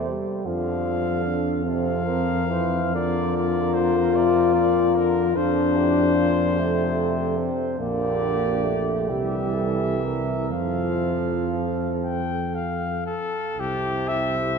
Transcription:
Already playing: E2 C3 C5 D5
0.10 G3
0.46 F2 D3 F3 A4 F5
1.24 D4
1.63 C3 C4 A4 F5
2.05 F3 A#4
2.48 E3 C5
2.94 D3 F4 A#4 D5
3.37 D5
3.74 C5
4.15 C3 D5
4.54 A#2 D5
4.95 D3 A#4
5.35 F2 F3 D4 A4 C5
5.76 A2 G4
6.16 A#2 F4
6.56 C3 A3 A4
7.37 C4
7.79 A#1 D3 A#3 G4 D5
8.64 A3
9.08 C2 E3 G3 G4 E5
9.55 A4
10.03 A#4
10.51 F2 F3 A4 F5
12.04 G5
12.55 F5
13.06 A4
13.56 C2 C4 E4 G4
14.08 E5

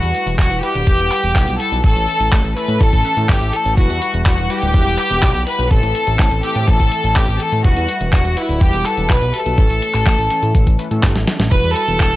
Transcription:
Already playing: G3 E4 F#4 B4
0.02 E2, closed hi-hat
0.15 closed hi-hat
0.26 E1, closed hi-hat
0.38 E1 F#4, kick, clap, closed hi-hat
0.51 E1, closed hi-hat
0.63 G3 E4 G4 B4 F#5, closed hi-hat
0.75 D1, closed hi-hat
0.87 E1, kick, closed hi-hat
0.99 E1, closed hi-hat
1.11 clap, closed hi-hat
1.24 E1, closed hi-hat
1.35 B1, kick, clap, closed hi-hat
1.48 B1, closed hi-hat
1.59 A4, closed hi-hat
1.72 B1, closed hi-hat
1.84 A1 E3 A3 C#4 A4, kick, closed hi-hat
1.96 A1, closed hi-hat
2.08 closed hi-hat
2.20 A1, closed hi-hat
2.32 A1, kick, clap, closed hi-hat
2.44 A1, closed hi-hat
2.56 E3 A3 C#4 A4 B4, closed hi-hat
2.68 A2, closed hi-hat
2.80 A1 A4, kick, closed hi-hat
2.93 A1, kick, closed hi-hat
3.05 E3 A3 C#4 B4, closed hi-hat
3.17 A2 E3 A3 C#4 A4, closed hi-hat
3.28 G1 G4, kick, clap, closed hi-hat
3.41 A1, closed hi-hat
3.53 A4, closed hi-hat
3.65 A1, closed hi-hat
3.77 E1 G3 E4 F#4 B4, kick, closed hi-hat
3.90 E2, closed hi-hat
4.02 closed hi-hat
4.14 E1, closed hi-hat
4.25 E1 F#4, kick, clap, closed hi-hat
4.38 E1, closed hi-hat
4.49 G3 E4 G4 B4 F#5, closed hi-hat
4.62 D1, closed hi-hat
4.74 E1, kick, closed hi-hat
4.86 E1, closed hi-hat
4.98 clap, closed hi-hat
5.11 E1, closed hi-hat
5.23 B1, kick, clap, closed hi-hat
5.35 B1, closed hi-hat
5.46 B4, closed hi-hat
5.59 B1, closed hi-hat
5.71 A1 E3 A3 C4 A4, kick, closed hi-hat
5.83 A1, closed hi-hat
5.95 closed hi-hat
6.07 A1, closed hi-hat
6.19 A1, kick, clap, closed hi-hat
6.31 A1, closed hi-hat
6.43 E3 A3 C4 G4 A4, closed hi-hat
6.55 A2, closed hi-hat
6.67 A1 A4, kick, closed hi-hat
6.80 A1, kick, closed hi-hat
6.92 closed hi-hat
7.04 A1, closed hi-hat
7.16 A1 G4, kick, clap, closed hi-hat
7.28 A1, closed hi-hat
7.40 A4, closed hi-hat
7.52 A2, closed hi-hat
7.64 E1 G3 E4 F#4 B4, kick, closed hi-hat
7.76 E2, closed hi-hat
7.89 closed hi-hat
8.01 E1, closed hi-hat
8.12 E1 F#4, kick, clap, closed hi-hat
8.25 E1, closed hi-hat
8.37 G3 E4 F#4 B4, closed hi-hat
8.49 D1, closed hi-hat
8.61 E1 G4, kick, closed hi-hat
8.73 E1, closed hi-hat
8.85 A4, clap, closed hi-hat
8.97 E1, closed hi-hat
9.10 B1 B4, kick, clap, closed hi-hat
9.22 B1, closed hi-hat
9.34 A4, closed hi-hat
9.46 B1, closed hi-hat
9.58 A1 E3 A3 C#4 A4, kick, closed hi-hat
9.70 A1, closed hi-hat
9.82 closed hi-hat
9.94 A1, clap, closed hi-hat
10.06 A1, kick, clap, closed hi-hat
10.19 A1, closed hi-hat
10.30 E3 A3 C#4 A4, closed hi-hat
10.43 A2, closed hi-hat
10.55 A1, kick, closed hi-hat
10.67 A1, kick, closed hi-hat
10.79 E3 A3 C#4 B4, closed hi-hat
10.91 A2 E3 A3 C#4 A4, closed hi-hat
11.03 G1, kick, snare, clap, closed hi-hat
11.15 A1, snare, closed hi-hat
11.27 snare, closed hi-hat
11.39 A1, snare, closed hi-hat
11.51 E1 G3 E4 F#4 B4, kick, closed hi-hat
11.64 E2, closed hi-hat
11.76 A4, closed hi-hat
11.88 E1, closed hi-hat
12.00 E1, kick, clap, closed hi-hat
12.12 E1, closed hi-hat

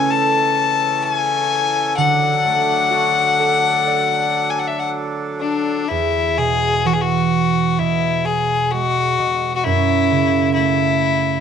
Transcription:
Already playing: C#3 E3 A3 C#4 E4 A4 G#5
0.10 A4 A5
1.03 A5
1.14 G#5
1.96 D3 F#3 D4 F#5
2.45 A3
2.91 F#4
3.40 A4
3.87 D5
4.50 G#5
4.59 F#5
4.68 E5
4.79 F#5
5.40 D4
5.89 E2 E4
6.38 B2 G#4
6.85 E3 F#4
6.93 G#4
7.01 F#4
7.79 B2 E4
8.25 G#4
8.71 G#3 F#4
9.19 B2
9.56 F#4
9.65 F#2 E4
10.11 C#3
10.53 A3 E4

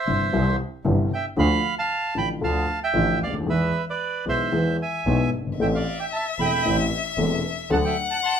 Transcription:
Already playing: C5 E5
0.07 G1 G2 C3 E3 G3 E4
0.32 C2 C3 E3 G3 E4
0.85 G1 G2 C3 E3 G3 E4
1.14 E5 G5
1.37 D2 D3 F3 A3 F4 F5 B5
1.79 F5 A5
2.15 A1 A2 D3 F3 A3 F4 G5 B5
2.41 D2 D3 F3 A3 F4 F5 A5
2.84 E5 G5
2.93 A1 A2 D3 F3 A3 F4
3.21 D2 D5 F5
3.26 C#2
3.33 D2
3.40 D#2
3.46 E2 E3 G#3 B3 G#4 B4 E5
3.90 B4 D5
4.26 B1 B2 E3 G#3 B3 G#4 C5 E5
4.52 E2 E3 G#3 B3 G#4
4.82 E5 G#5
5.05 B1 B2 E3 G#3 B3 G#4
5.32 G1
5.40 F#1
5.46 G1
5.53 G#1
5.58 A1 A2 E3 A3 C4 A4 E5 G5
5.63 E5
5.75 D5 F5
6.00 E5 G5
6.13 E5 A5
6.39 E1 E2 E3 A3 C4 A4 G5 B5
6.65 A1 A2 E3 A3 C4 A4
7.18 E1 E2 E3 A3 C4 A4
7.70 D2 D3 F#3 A3 D4 A4 F#5 A5
7.85 E5 G5
8.11 F#5 A5
8.23 A5 C6

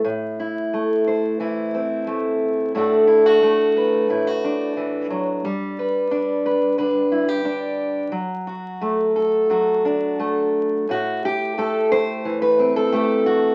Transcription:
0.04 A2
0.40 E4
0.73 A3
1.07 C5
1.40 E3 E4
1.75 C4
2.07 A3
2.75 A2 A3 D4 F#4 A4
3.07 E4
3.26 F#4
3.42 A3
3.77 B4
4.10 A2 E4
4.27 F#4
4.44 D4
4.77 E3
5.10 F#3
5.45 G3
5.79 B4
6.11 D4
6.46 B4
6.78 D3 B4
7.12 E4
7.28 G4
7.45 D4
8.12 F#3
8.47 F#4
8.81 A3
9.16 A4
9.50 F#3 F#4
9.85 D4
10.19 A3
10.89 A2 F#4
11.25 G4
11.58 A3 A4
11.92 C5
12.25 E3
12.42 B4
12.59 C4
12.76 A4
12.92 A3 G4
13.26 F#4

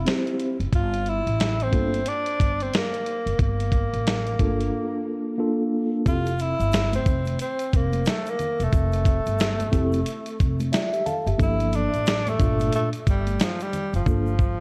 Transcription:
0.06 C4 E4 G4 C5, snare, closed hi-hat
0.27 closed hi-hat
0.40 closed hi-hat
0.60 F#1, closed hi-hat
0.73 G1 F4, kick, closed hi-hat
0.94 closed hi-hat
1.06 E4, closed hi-hat
1.27 A1, closed hi-hat
1.40 snare, closed hi-hat
1.60 C4, closed hi-hat
1.71 G1 A#3 D4 F4 A4, kick, closed hi-hat
1.94 closed hi-hat
2.06 D4, closed hi-hat
2.26 closed hi-hat
2.40 G1, kick, closed hi-hat
2.60 C4, closed hi-hat
2.74 A#3, snare, closed hi-hat
2.94 closed hi-hat
3.06 closed hi-hat
3.26 F#1, closed hi-hat
3.39 G1 A#3, kick, closed hi-hat
3.60 closed hi-hat
3.72 kick, closed hi-hat
3.93 A1, closed hi-hat
4.07 snare, closed hi-hat
4.27 closed hi-hat
4.39 G1 A3 D4 F4 A4, kick, closed hi-hat
4.45 A#3
4.61 closed hi-hat
5.38 A#3 D4 F4 A4
6.06 F1 C4 E4 F4 G4 A4, kick, closed hi-hat, shaker
6.26 closed hi-hat, shaker
6.39 E4, closed hi-hat, shaker
6.60 G1, closed hi-hat, shaker
6.72 snare, closed hi-hat, shaker
6.93 C4, closed hi-hat, high conga, shaker
7.06 F1, kick, closed hi-hat, low conga, shaker
7.25 closed hi-hat, high conga, shaker
7.39 C4, closed hi-hat, shaker
7.59 closed hi-hat, shaker
7.73 F1 A#3, kick, closed hi-hat, shaker
7.93 closed hi-hat, high conga, shaker
8.05 A3, snare, closed hi-hat, shaker
8.26 A#3, closed hi-hat, shaker
8.39 closed hi-hat, low conga, shaker
8.60 E1 A3, closed hi-hat, shaker
8.73 F1, kick, closed hi-hat, shaker
8.92 closed hi-hat, shaker
9.05 kick, closed hi-hat, shaker
9.26 G1, closed hi-hat, shaker
9.39 snare, closed hi-hat, shaker
9.60 closed hi-hat, high conga, shaker
9.72 F1 C4 E4 G4 A4, kick, closed hi-hat, low conga, shaker
9.92 closed hi-hat, high conga, shaker
10.06 closed hi-hat, shaker
10.26 closed hi-hat, shaker
10.40 F1, kick, closed hi-hat, shaker
10.60 closed hi-hat, high conga, shaker
10.72 F4 D5 E5, snare, closed hi-hat, shaker
10.93 G4 E5, closed hi-hat, shaker
11.06 A4 F5 A5, closed hi-hat, low conga, shaker
11.26 F#1 G4 E5, closed hi-hat, shaker
11.38 G1 F3 A#3 D4 A4, kick, closed hi-hat, shaker
11.42 E4
11.60 closed hi-hat, shaker
11.72 D4, closed hi-hat, shaker
11.94 A1, closed hi-hat, shaker
12.06 snare, closed hi-hat, shaker
12.27 A3, closed hi-hat, high conga, shaker
12.38 G1 A#2 D4 F4 A4, kick, closed hi-hat, low conga, shaker
12.60 closed hi-hat, high conga, shaker
12.72 A3, closed hi-hat, shaker
12.93 closed hi-hat, shaker
13.07 G1 G3, kick, closed hi-hat, shaker
13.27 closed hi-hat, high conga, shaker
13.40 F3, snare, closed hi-hat, shaker
13.60 G3, closed hi-hat, shaker
13.73 closed hi-hat, low conga, shaker
13.93 F#1 F3, closed hi-hat, shaker
14.06 G1 A#3 D4 F4 A4, kick, shaker
14.26 shaker
14.39 kick, shaker

